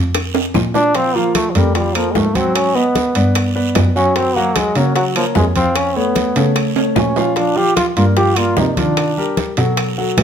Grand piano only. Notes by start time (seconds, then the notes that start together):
0.95 F3 F4 F5
1.15 F3 F4 F5
1.55 A3 A4 A#4
1.76 F3 F4 F5
1.95 A#3 A4 A#4
2.35 F#3 F#4 F#5
2.75 B3 B4 D#5
3.15 B3 B4 D5
3.55 B3 B4 D5
3.96 F#3 F#4 F#5
4.16 F#3 F#4 F#5
4.36 F#3 F#4 F#5
4.76 A#3 A#4 C#5
4.96 F#3 F#4 F#5
5.16 A#3 A#4 C#5
5.56 F3 F4 F5
5.96 A3 A4 C#5
6.36 A3 A4 C#5
6.76 A3 A4 C#5
7.17 F3 F4 F5
7.36 F3 F4 F5
7.56 F3 F4 F5
7.96 A#3 A#4 D5
8.16 F3 F4 F5
8.37 A#3 A#4 D5
8.77 D#3 F4 D5
9.17 G3 G4 A#4
9.58 F#3 F#4 A4
9.98 F#3 F#4 A4